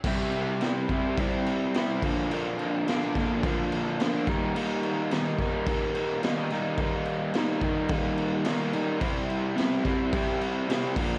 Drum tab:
CC |xxxxxxxx|xxxxxxxx|xxxxxxxx|xxxxxxxx|
SD |--o---o-|--oo--oo|--oo--oo|--o---o-|
BD |o--oo--o|---oo--o|---oo---|o--oo---|

CC |xxxxxxxx|
SD |--oo--o-|
BD |o--oo--o|